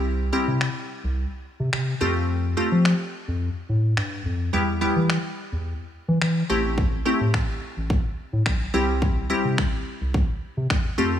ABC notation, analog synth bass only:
X:1
M:4/4
L:1/16
Q:1/4=107
K:C
V:1 name="Analog synth bass" clef=bass
C,,3 C,2 z2 C,,2 z2 C, C,2 F,,2- | F,,3 F,2 z2 F,,2 z A,,2 G,,2 F,,2 | E,,3 E,2 z2 E,,2 z2 E, E,2 A,,,2- | A,,,3 A,,2 z2 A,,,2 z2 A,, B,,,2 C,,2- |
C,,3 C,2 z2 C,,2 z2 C, E,,2 F,,2 |]